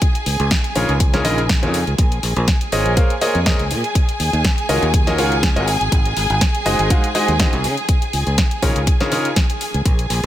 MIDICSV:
0, 0, Header, 1, 5, 480
1, 0, Start_track
1, 0, Tempo, 491803
1, 18, Time_signature, 4, 2, 24, 8
1, 10014, End_track
2, 0, Start_track
2, 0, Title_t, "Violin section"
2, 0, Program_c, 0, 48
2, 0, Note_on_c, 0, 68, 79
2, 0, Note_on_c, 0, 80, 84
2, 1924, Note_off_c, 0, 68, 0
2, 1925, Note_off_c, 0, 80, 0
2, 1936, Note_on_c, 0, 68, 82
2, 1937, Note_on_c, 0, 80, 80
2, 9605, Note_off_c, 0, 68, 0
2, 9606, Note_off_c, 0, 80, 0
2, 9617, Note_on_c, 0, 68, 82
2, 9617, Note_on_c, 0, 80, 82
2, 10014, Note_off_c, 0, 68, 0
2, 10014, Note_off_c, 0, 80, 0
2, 10014, End_track
3, 0, Start_track
3, 0, Title_t, "Grand piano"
3, 0, Program_c, 1, 0
3, 737, Note_on_c, 1, 70, 77
3, 737, Note_on_c, 1, 73, 96
3, 738, Note_on_c, 1, 49, 87
3, 738, Note_on_c, 1, 63, 78
3, 738, Note_on_c, 1, 65, 81
3, 738, Note_on_c, 1, 68, 78
3, 883, Note_off_c, 1, 49, 0
3, 883, Note_off_c, 1, 63, 0
3, 883, Note_off_c, 1, 65, 0
3, 883, Note_off_c, 1, 68, 0
3, 883, Note_off_c, 1, 70, 0
3, 883, Note_off_c, 1, 73, 0
3, 1108, Note_on_c, 1, 49, 80
3, 1108, Note_on_c, 1, 63, 72
3, 1108, Note_on_c, 1, 65, 70
3, 1108, Note_on_c, 1, 68, 69
3, 1108, Note_on_c, 1, 70, 70
3, 1108, Note_on_c, 1, 73, 85
3, 1201, Note_off_c, 1, 49, 0
3, 1201, Note_off_c, 1, 63, 0
3, 1201, Note_off_c, 1, 65, 0
3, 1201, Note_off_c, 1, 68, 0
3, 1201, Note_off_c, 1, 70, 0
3, 1201, Note_off_c, 1, 73, 0
3, 1217, Note_on_c, 1, 49, 85
3, 1217, Note_on_c, 1, 75, 98
3, 1218, Note_on_c, 1, 63, 78
3, 1218, Note_on_c, 1, 65, 77
3, 1218, Note_on_c, 1, 68, 77
3, 1218, Note_on_c, 1, 70, 80
3, 1363, Note_off_c, 1, 49, 0
3, 1363, Note_off_c, 1, 63, 0
3, 1363, Note_off_c, 1, 65, 0
3, 1363, Note_off_c, 1, 68, 0
3, 1363, Note_off_c, 1, 70, 0
3, 1363, Note_off_c, 1, 75, 0
3, 1587, Note_on_c, 1, 65, 71
3, 1587, Note_on_c, 1, 70, 70
3, 1588, Note_on_c, 1, 49, 77
3, 1588, Note_on_c, 1, 63, 69
3, 1588, Note_on_c, 1, 68, 70
3, 1588, Note_on_c, 1, 73, 86
3, 1715, Note_off_c, 1, 65, 0
3, 1715, Note_off_c, 1, 70, 0
3, 1716, Note_off_c, 1, 49, 0
3, 1716, Note_off_c, 1, 63, 0
3, 1716, Note_off_c, 1, 68, 0
3, 1716, Note_off_c, 1, 73, 0
3, 2658, Note_on_c, 1, 58, 80
3, 2658, Note_on_c, 1, 68, 75
3, 2658, Note_on_c, 1, 70, 71
3, 2658, Note_on_c, 1, 72, 72
3, 2658, Note_on_c, 1, 73, 74
3, 2658, Note_on_c, 1, 75, 85
3, 2871, Note_off_c, 1, 75, 0
3, 2872, Note_off_c, 1, 58, 0
3, 2872, Note_off_c, 1, 68, 0
3, 2872, Note_off_c, 1, 70, 0
3, 2872, Note_off_c, 1, 72, 0
3, 2872, Note_off_c, 1, 73, 0
3, 2898, Note_on_c, 1, 68, 79
3, 2898, Note_on_c, 1, 72, 76
3, 2899, Note_on_c, 1, 58, 84
3, 2899, Note_on_c, 1, 70, 77
3, 2899, Note_on_c, 1, 73, 76
3, 2899, Note_on_c, 1, 77, 92
3, 3044, Note_off_c, 1, 58, 0
3, 3044, Note_off_c, 1, 68, 0
3, 3044, Note_off_c, 1, 70, 0
3, 3044, Note_off_c, 1, 72, 0
3, 3044, Note_off_c, 1, 73, 0
3, 3044, Note_off_c, 1, 77, 0
3, 3137, Note_on_c, 1, 70, 75
3, 3137, Note_on_c, 1, 73, 74
3, 3137, Note_on_c, 1, 75, 90
3, 3138, Note_on_c, 1, 58, 82
3, 3138, Note_on_c, 1, 68, 77
3, 3138, Note_on_c, 1, 72, 73
3, 3283, Note_off_c, 1, 58, 0
3, 3283, Note_off_c, 1, 68, 0
3, 3283, Note_off_c, 1, 70, 0
3, 3283, Note_off_c, 1, 72, 0
3, 3283, Note_off_c, 1, 73, 0
3, 3283, Note_off_c, 1, 75, 0
3, 3378, Note_on_c, 1, 68, 77
3, 3378, Note_on_c, 1, 75, 93
3, 3379, Note_on_c, 1, 58, 81
3, 3379, Note_on_c, 1, 70, 76
3, 3379, Note_on_c, 1, 72, 75
3, 3379, Note_on_c, 1, 73, 76
3, 3524, Note_off_c, 1, 58, 0
3, 3524, Note_off_c, 1, 68, 0
3, 3524, Note_off_c, 1, 70, 0
3, 3524, Note_off_c, 1, 72, 0
3, 3524, Note_off_c, 1, 73, 0
3, 3524, Note_off_c, 1, 75, 0
3, 4577, Note_on_c, 1, 73, 82
3, 4577, Note_on_c, 1, 75, 99
3, 4578, Note_on_c, 1, 51, 85
3, 4578, Note_on_c, 1, 65, 80
3, 4578, Note_on_c, 1, 66, 78
3, 4578, Note_on_c, 1, 70, 80
3, 4723, Note_off_c, 1, 65, 0
3, 4723, Note_off_c, 1, 66, 0
3, 4723, Note_off_c, 1, 70, 0
3, 4723, Note_off_c, 1, 73, 0
3, 4723, Note_off_c, 1, 75, 0
3, 4724, Note_off_c, 1, 51, 0
3, 4948, Note_on_c, 1, 51, 78
3, 4948, Note_on_c, 1, 65, 72
3, 4948, Note_on_c, 1, 70, 74
3, 4948, Note_on_c, 1, 75, 89
3, 4949, Note_on_c, 1, 66, 74
3, 4949, Note_on_c, 1, 73, 74
3, 5041, Note_off_c, 1, 51, 0
3, 5041, Note_off_c, 1, 65, 0
3, 5041, Note_off_c, 1, 66, 0
3, 5041, Note_off_c, 1, 70, 0
3, 5041, Note_off_c, 1, 75, 0
3, 5042, Note_off_c, 1, 73, 0
3, 5058, Note_on_c, 1, 51, 89
3, 5058, Note_on_c, 1, 65, 82
3, 5058, Note_on_c, 1, 66, 78
3, 5058, Note_on_c, 1, 70, 82
3, 5058, Note_on_c, 1, 73, 79
3, 5058, Note_on_c, 1, 77, 96
3, 5204, Note_off_c, 1, 51, 0
3, 5204, Note_off_c, 1, 65, 0
3, 5204, Note_off_c, 1, 66, 0
3, 5204, Note_off_c, 1, 70, 0
3, 5204, Note_off_c, 1, 73, 0
3, 5204, Note_off_c, 1, 77, 0
3, 5427, Note_on_c, 1, 65, 77
3, 5427, Note_on_c, 1, 66, 69
3, 5427, Note_on_c, 1, 70, 70
3, 5427, Note_on_c, 1, 73, 73
3, 5428, Note_on_c, 1, 75, 86
3, 5524, Note_off_c, 1, 65, 0
3, 5524, Note_off_c, 1, 66, 0
3, 5524, Note_off_c, 1, 70, 0
3, 5524, Note_off_c, 1, 73, 0
3, 5524, Note_off_c, 1, 75, 0
3, 6497, Note_on_c, 1, 56, 81
3, 6497, Note_on_c, 1, 66, 72
3, 6497, Note_on_c, 1, 68, 71
3, 6497, Note_on_c, 1, 72, 74
3, 6497, Note_on_c, 1, 75, 92
3, 6498, Note_on_c, 1, 63, 72
3, 6711, Note_off_c, 1, 56, 0
3, 6711, Note_off_c, 1, 66, 0
3, 6711, Note_off_c, 1, 68, 0
3, 6711, Note_off_c, 1, 72, 0
3, 6711, Note_off_c, 1, 75, 0
3, 6712, Note_off_c, 1, 63, 0
3, 6738, Note_on_c, 1, 56, 81
3, 6738, Note_on_c, 1, 63, 78
3, 6738, Note_on_c, 1, 66, 79
3, 6738, Note_on_c, 1, 68, 74
3, 6738, Note_on_c, 1, 72, 74
3, 6739, Note_on_c, 1, 77, 92
3, 6884, Note_off_c, 1, 56, 0
3, 6884, Note_off_c, 1, 63, 0
3, 6884, Note_off_c, 1, 66, 0
3, 6884, Note_off_c, 1, 68, 0
3, 6884, Note_off_c, 1, 72, 0
3, 6884, Note_off_c, 1, 77, 0
3, 6977, Note_on_c, 1, 56, 85
3, 6977, Note_on_c, 1, 63, 77
3, 6977, Note_on_c, 1, 66, 75
3, 6977, Note_on_c, 1, 68, 77
3, 6977, Note_on_c, 1, 72, 78
3, 6977, Note_on_c, 1, 75, 89
3, 7123, Note_off_c, 1, 56, 0
3, 7123, Note_off_c, 1, 63, 0
3, 7123, Note_off_c, 1, 66, 0
3, 7123, Note_off_c, 1, 68, 0
3, 7123, Note_off_c, 1, 72, 0
3, 7123, Note_off_c, 1, 75, 0
3, 7217, Note_on_c, 1, 49, 84
3, 7217, Note_on_c, 1, 66, 77
3, 7217, Note_on_c, 1, 72, 77
3, 7218, Note_on_c, 1, 63, 78
3, 7218, Note_on_c, 1, 68, 74
3, 7218, Note_on_c, 1, 75, 93
3, 7363, Note_off_c, 1, 49, 0
3, 7363, Note_off_c, 1, 66, 0
3, 7363, Note_off_c, 1, 72, 0
3, 7363, Note_off_c, 1, 75, 0
3, 7364, Note_off_c, 1, 63, 0
3, 7364, Note_off_c, 1, 68, 0
3, 8418, Note_on_c, 1, 49, 87
3, 8418, Note_on_c, 1, 63, 81
3, 8418, Note_on_c, 1, 65, 79
3, 8418, Note_on_c, 1, 73, 100
3, 8419, Note_on_c, 1, 68, 79
3, 8419, Note_on_c, 1, 70, 79
3, 8563, Note_off_c, 1, 65, 0
3, 8564, Note_off_c, 1, 49, 0
3, 8564, Note_off_c, 1, 63, 0
3, 8564, Note_off_c, 1, 68, 0
3, 8564, Note_off_c, 1, 70, 0
3, 8564, Note_off_c, 1, 73, 0
3, 8789, Note_on_c, 1, 49, 82
3, 8789, Note_on_c, 1, 63, 70
3, 8789, Note_on_c, 1, 65, 69
3, 8789, Note_on_c, 1, 70, 72
3, 8789, Note_on_c, 1, 73, 88
3, 8790, Note_on_c, 1, 68, 74
3, 8876, Note_off_c, 1, 49, 0
3, 8876, Note_off_c, 1, 63, 0
3, 8876, Note_off_c, 1, 70, 0
3, 8876, Note_off_c, 1, 73, 0
3, 8877, Note_off_c, 1, 65, 0
3, 8877, Note_off_c, 1, 68, 0
3, 8899, Note_on_c, 1, 49, 83
3, 8899, Note_on_c, 1, 63, 75
3, 8899, Note_on_c, 1, 65, 75
3, 8899, Note_on_c, 1, 68, 73
3, 8899, Note_on_c, 1, 70, 74
3, 8899, Note_on_c, 1, 73, 89
3, 9044, Note_off_c, 1, 49, 0
3, 9044, Note_off_c, 1, 63, 0
3, 9044, Note_off_c, 1, 65, 0
3, 9044, Note_off_c, 1, 68, 0
3, 9044, Note_off_c, 1, 70, 0
3, 9044, Note_off_c, 1, 73, 0
3, 10014, End_track
4, 0, Start_track
4, 0, Title_t, "Fingered electric bass"
4, 0, Program_c, 2, 33
4, 256, Note_on_c, 2, 37, 90
4, 364, Note_off_c, 2, 37, 0
4, 386, Note_on_c, 2, 37, 100
4, 477, Note_off_c, 2, 37, 0
4, 738, Note_on_c, 2, 34, 85
4, 845, Note_off_c, 2, 34, 0
4, 867, Note_on_c, 2, 37, 85
4, 1217, Note_off_c, 2, 37, 0
4, 1217, Note_on_c, 2, 34, 93
4, 1587, Note_on_c, 2, 41, 95
4, 1602, Note_off_c, 2, 34, 0
4, 1781, Note_off_c, 2, 41, 0
4, 1828, Note_on_c, 2, 37, 82
4, 1918, Note_off_c, 2, 37, 0
4, 1938, Note_on_c, 2, 34, 87
4, 2138, Note_off_c, 2, 34, 0
4, 2177, Note_on_c, 2, 34, 84
4, 2284, Note_off_c, 2, 34, 0
4, 2307, Note_on_c, 2, 34, 96
4, 2397, Note_off_c, 2, 34, 0
4, 2658, Note_on_c, 2, 32, 85
4, 2765, Note_off_c, 2, 32, 0
4, 2788, Note_on_c, 2, 34, 90
4, 2878, Note_off_c, 2, 34, 0
4, 3268, Note_on_c, 2, 41, 81
4, 3461, Note_off_c, 2, 41, 0
4, 3508, Note_on_c, 2, 37, 85
4, 3618, Note_on_c, 2, 46, 75
4, 3633, Note_off_c, 2, 37, 0
4, 3725, Note_off_c, 2, 46, 0
4, 4097, Note_on_c, 2, 39, 86
4, 4204, Note_off_c, 2, 39, 0
4, 4228, Note_on_c, 2, 39, 100
4, 4318, Note_off_c, 2, 39, 0
4, 4578, Note_on_c, 2, 37, 81
4, 4685, Note_off_c, 2, 37, 0
4, 4709, Note_on_c, 2, 39, 87
4, 5059, Note_off_c, 2, 39, 0
4, 5059, Note_on_c, 2, 37, 96
4, 5429, Note_on_c, 2, 32, 93
4, 5443, Note_off_c, 2, 37, 0
4, 5621, Note_off_c, 2, 32, 0
4, 5667, Note_on_c, 2, 32, 83
4, 5758, Note_off_c, 2, 32, 0
4, 5778, Note_on_c, 2, 32, 91
4, 5978, Note_off_c, 2, 32, 0
4, 6018, Note_on_c, 2, 32, 92
4, 6125, Note_off_c, 2, 32, 0
4, 6148, Note_on_c, 2, 32, 101
4, 6238, Note_off_c, 2, 32, 0
4, 6497, Note_on_c, 2, 30, 82
4, 6604, Note_off_c, 2, 30, 0
4, 6628, Note_on_c, 2, 32, 87
4, 6718, Note_off_c, 2, 32, 0
4, 7108, Note_on_c, 2, 39, 85
4, 7301, Note_off_c, 2, 39, 0
4, 7349, Note_on_c, 2, 36, 90
4, 7459, Note_on_c, 2, 49, 75
4, 7473, Note_off_c, 2, 36, 0
4, 7565, Note_off_c, 2, 49, 0
4, 7939, Note_on_c, 2, 37, 86
4, 8045, Note_off_c, 2, 37, 0
4, 8069, Note_on_c, 2, 37, 98
4, 8158, Note_off_c, 2, 37, 0
4, 8417, Note_on_c, 2, 34, 79
4, 8524, Note_off_c, 2, 34, 0
4, 8548, Note_on_c, 2, 37, 86
4, 8638, Note_off_c, 2, 37, 0
4, 9509, Note_on_c, 2, 37, 77
4, 9598, Note_off_c, 2, 37, 0
4, 9618, Note_on_c, 2, 34, 87
4, 9818, Note_off_c, 2, 34, 0
4, 9857, Note_on_c, 2, 34, 85
4, 9964, Note_off_c, 2, 34, 0
4, 10014, End_track
5, 0, Start_track
5, 0, Title_t, "Drums"
5, 16, Note_on_c, 9, 42, 85
5, 17, Note_on_c, 9, 36, 113
5, 114, Note_off_c, 9, 36, 0
5, 114, Note_off_c, 9, 42, 0
5, 147, Note_on_c, 9, 42, 35
5, 245, Note_off_c, 9, 42, 0
5, 256, Note_on_c, 9, 46, 104
5, 354, Note_off_c, 9, 46, 0
5, 387, Note_on_c, 9, 42, 35
5, 485, Note_off_c, 9, 42, 0
5, 497, Note_on_c, 9, 36, 112
5, 497, Note_on_c, 9, 42, 86
5, 499, Note_on_c, 9, 38, 112
5, 594, Note_off_c, 9, 42, 0
5, 595, Note_off_c, 9, 36, 0
5, 596, Note_off_c, 9, 38, 0
5, 627, Note_on_c, 9, 42, 37
5, 724, Note_off_c, 9, 42, 0
5, 737, Note_on_c, 9, 46, 108
5, 834, Note_off_c, 9, 46, 0
5, 868, Note_on_c, 9, 42, 37
5, 965, Note_off_c, 9, 42, 0
5, 977, Note_on_c, 9, 36, 121
5, 978, Note_on_c, 9, 42, 83
5, 1075, Note_off_c, 9, 36, 0
5, 1075, Note_off_c, 9, 42, 0
5, 1108, Note_on_c, 9, 42, 36
5, 1110, Note_on_c, 9, 38, 35
5, 1206, Note_off_c, 9, 42, 0
5, 1208, Note_off_c, 9, 38, 0
5, 1217, Note_on_c, 9, 46, 106
5, 1315, Note_off_c, 9, 46, 0
5, 1348, Note_on_c, 9, 42, 37
5, 1446, Note_off_c, 9, 42, 0
5, 1457, Note_on_c, 9, 36, 118
5, 1457, Note_on_c, 9, 42, 80
5, 1459, Note_on_c, 9, 38, 109
5, 1555, Note_off_c, 9, 36, 0
5, 1555, Note_off_c, 9, 42, 0
5, 1557, Note_off_c, 9, 38, 0
5, 1589, Note_on_c, 9, 42, 36
5, 1686, Note_off_c, 9, 42, 0
5, 1698, Note_on_c, 9, 46, 105
5, 1795, Note_off_c, 9, 46, 0
5, 1828, Note_on_c, 9, 42, 35
5, 1926, Note_off_c, 9, 42, 0
5, 1937, Note_on_c, 9, 42, 87
5, 1938, Note_on_c, 9, 36, 111
5, 2035, Note_off_c, 9, 36, 0
5, 2035, Note_off_c, 9, 42, 0
5, 2067, Note_on_c, 9, 42, 35
5, 2165, Note_off_c, 9, 42, 0
5, 2177, Note_on_c, 9, 46, 101
5, 2275, Note_off_c, 9, 46, 0
5, 2308, Note_on_c, 9, 42, 37
5, 2406, Note_off_c, 9, 42, 0
5, 2417, Note_on_c, 9, 36, 110
5, 2417, Note_on_c, 9, 42, 84
5, 2419, Note_on_c, 9, 38, 106
5, 2515, Note_off_c, 9, 36, 0
5, 2515, Note_off_c, 9, 42, 0
5, 2517, Note_off_c, 9, 38, 0
5, 2547, Note_on_c, 9, 42, 38
5, 2645, Note_off_c, 9, 42, 0
5, 2657, Note_on_c, 9, 46, 100
5, 2755, Note_off_c, 9, 46, 0
5, 2788, Note_on_c, 9, 42, 37
5, 2886, Note_off_c, 9, 42, 0
5, 2898, Note_on_c, 9, 36, 113
5, 2898, Note_on_c, 9, 42, 89
5, 2995, Note_off_c, 9, 36, 0
5, 2995, Note_off_c, 9, 42, 0
5, 3029, Note_on_c, 9, 42, 37
5, 3126, Note_off_c, 9, 42, 0
5, 3137, Note_on_c, 9, 46, 103
5, 3235, Note_off_c, 9, 46, 0
5, 3268, Note_on_c, 9, 42, 37
5, 3366, Note_off_c, 9, 42, 0
5, 3378, Note_on_c, 9, 36, 113
5, 3378, Note_on_c, 9, 42, 84
5, 3379, Note_on_c, 9, 38, 105
5, 3475, Note_off_c, 9, 36, 0
5, 3475, Note_off_c, 9, 42, 0
5, 3477, Note_off_c, 9, 38, 0
5, 3508, Note_on_c, 9, 42, 38
5, 3606, Note_off_c, 9, 42, 0
5, 3617, Note_on_c, 9, 46, 99
5, 3715, Note_off_c, 9, 46, 0
5, 3749, Note_on_c, 9, 42, 37
5, 3846, Note_off_c, 9, 42, 0
5, 3858, Note_on_c, 9, 36, 104
5, 3858, Note_on_c, 9, 42, 89
5, 3955, Note_off_c, 9, 36, 0
5, 3956, Note_off_c, 9, 42, 0
5, 3989, Note_on_c, 9, 42, 37
5, 4086, Note_off_c, 9, 42, 0
5, 4098, Note_on_c, 9, 46, 98
5, 4196, Note_off_c, 9, 46, 0
5, 4230, Note_on_c, 9, 42, 37
5, 4328, Note_off_c, 9, 42, 0
5, 4338, Note_on_c, 9, 36, 108
5, 4338, Note_on_c, 9, 42, 86
5, 4340, Note_on_c, 9, 38, 111
5, 4435, Note_off_c, 9, 36, 0
5, 4436, Note_off_c, 9, 42, 0
5, 4438, Note_off_c, 9, 38, 0
5, 4470, Note_on_c, 9, 42, 37
5, 4567, Note_off_c, 9, 42, 0
5, 4579, Note_on_c, 9, 46, 99
5, 4677, Note_off_c, 9, 46, 0
5, 4710, Note_on_c, 9, 42, 39
5, 4808, Note_off_c, 9, 42, 0
5, 4818, Note_on_c, 9, 36, 113
5, 4819, Note_on_c, 9, 42, 91
5, 4915, Note_off_c, 9, 36, 0
5, 4916, Note_off_c, 9, 42, 0
5, 4950, Note_on_c, 9, 42, 38
5, 4952, Note_on_c, 9, 38, 33
5, 5048, Note_off_c, 9, 42, 0
5, 5050, Note_off_c, 9, 38, 0
5, 5060, Note_on_c, 9, 46, 99
5, 5157, Note_off_c, 9, 46, 0
5, 5190, Note_on_c, 9, 42, 38
5, 5288, Note_off_c, 9, 42, 0
5, 5298, Note_on_c, 9, 36, 109
5, 5299, Note_on_c, 9, 42, 83
5, 5301, Note_on_c, 9, 38, 104
5, 5395, Note_off_c, 9, 36, 0
5, 5397, Note_off_c, 9, 42, 0
5, 5399, Note_off_c, 9, 38, 0
5, 5431, Note_on_c, 9, 42, 39
5, 5528, Note_off_c, 9, 42, 0
5, 5540, Note_on_c, 9, 46, 102
5, 5638, Note_off_c, 9, 46, 0
5, 5671, Note_on_c, 9, 42, 38
5, 5768, Note_off_c, 9, 42, 0
5, 5778, Note_on_c, 9, 36, 107
5, 5779, Note_on_c, 9, 42, 92
5, 5875, Note_off_c, 9, 36, 0
5, 5877, Note_off_c, 9, 42, 0
5, 5909, Note_on_c, 9, 42, 38
5, 6007, Note_off_c, 9, 42, 0
5, 6018, Note_on_c, 9, 46, 95
5, 6115, Note_off_c, 9, 46, 0
5, 6148, Note_on_c, 9, 42, 38
5, 6246, Note_off_c, 9, 42, 0
5, 6258, Note_on_c, 9, 36, 108
5, 6258, Note_on_c, 9, 42, 91
5, 6260, Note_on_c, 9, 38, 112
5, 6355, Note_off_c, 9, 42, 0
5, 6356, Note_off_c, 9, 36, 0
5, 6357, Note_off_c, 9, 38, 0
5, 6389, Note_on_c, 9, 42, 41
5, 6486, Note_off_c, 9, 42, 0
5, 6498, Note_on_c, 9, 46, 100
5, 6596, Note_off_c, 9, 46, 0
5, 6629, Note_on_c, 9, 42, 40
5, 6726, Note_off_c, 9, 42, 0
5, 6738, Note_on_c, 9, 36, 112
5, 6738, Note_on_c, 9, 42, 94
5, 6835, Note_off_c, 9, 36, 0
5, 6836, Note_off_c, 9, 42, 0
5, 6869, Note_on_c, 9, 42, 41
5, 6967, Note_off_c, 9, 42, 0
5, 6977, Note_on_c, 9, 46, 99
5, 7075, Note_off_c, 9, 46, 0
5, 7109, Note_on_c, 9, 42, 42
5, 7206, Note_off_c, 9, 42, 0
5, 7218, Note_on_c, 9, 36, 114
5, 7218, Note_on_c, 9, 42, 92
5, 7219, Note_on_c, 9, 38, 111
5, 7315, Note_off_c, 9, 36, 0
5, 7315, Note_off_c, 9, 42, 0
5, 7317, Note_off_c, 9, 38, 0
5, 7348, Note_on_c, 9, 42, 39
5, 7446, Note_off_c, 9, 42, 0
5, 7458, Note_on_c, 9, 46, 97
5, 7555, Note_off_c, 9, 46, 0
5, 7588, Note_on_c, 9, 42, 38
5, 7686, Note_off_c, 9, 42, 0
5, 7697, Note_on_c, 9, 36, 108
5, 7697, Note_on_c, 9, 42, 97
5, 7795, Note_off_c, 9, 36, 0
5, 7795, Note_off_c, 9, 42, 0
5, 7827, Note_on_c, 9, 42, 38
5, 7925, Note_off_c, 9, 42, 0
5, 7938, Note_on_c, 9, 46, 94
5, 8036, Note_off_c, 9, 46, 0
5, 8068, Note_on_c, 9, 42, 38
5, 8166, Note_off_c, 9, 42, 0
5, 8178, Note_on_c, 9, 36, 109
5, 8178, Note_on_c, 9, 42, 92
5, 8180, Note_on_c, 9, 38, 115
5, 8275, Note_off_c, 9, 36, 0
5, 8275, Note_off_c, 9, 42, 0
5, 8277, Note_off_c, 9, 38, 0
5, 8308, Note_on_c, 9, 42, 41
5, 8406, Note_off_c, 9, 42, 0
5, 8418, Note_on_c, 9, 36, 57
5, 8418, Note_on_c, 9, 46, 97
5, 8515, Note_off_c, 9, 36, 0
5, 8515, Note_off_c, 9, 46, 0
5, 8549, Note_on_c, 9, 42, 40
5, 8646, Note_off_c, 9, 42, 0
5, 8658, Note_on_c, 9, 36, 108
5, 8658, Note_on_c, 9, 42, 94
5, 8755, Note_off_c, 9, 36, 0
5, 8756, Note_off_c, 9, 42, 0
5, 8789, Note_on_c, 9, 42, 40
5, 8791, Note_on_c, 9, 38, 35
5, 8886, Note_off_c, 9, 42, 0
5, 8888, Note_off_c, 9, 38, 0
5, 8898, Note_on_c, 9, 46, 98
5, 8996, Note_off_c, 9, 46, 0
5, 9029, Note_on_c, 9, 42, 42
5, 9127, Note_off_c, 9, 42, 0
5, 9138, Note_on_c, 9, 36, 113
5, 9138, Note_on_c, 9, 42, 92
5, 9140, Note_on_c, 9, 38, 114
5, 9236, Note_off_c, 9, 36, 0
5, 9236, Note_off_c, 9, 42, 0
5, 9238, Note_off_c, 9, 38, 0
5, 9269, Note_on_c, 9, 42, 42
5, 9366, Note_off_c, 9, 42, 0
5, 9378, Note_on_c, 9, 46, 98
5, 9476, Note_off_c, 9, 46, 0
5, 9510, Note_on_c, 9, 42, 39
5, 9607, Note_off_c, 9, 42, 0
5, 9618, Note_on_c, 9, 36, 108
5, 9619, Note_on_c, 9, 42, 95
5, 9716, Note_off_c, 9, 36, 0
5, 9716, Note_off_c, 9, 42, 0
5, 9749, Note_on_c, 9, 42, 38
5, 9847, Note_off_c, 9, 42, 0
5, 9859, Note_on_c, 9, 46, 101
5, 9957, Note_off_c, 9, 46, 0
5, 10014, End_track
0, 0, End_of_file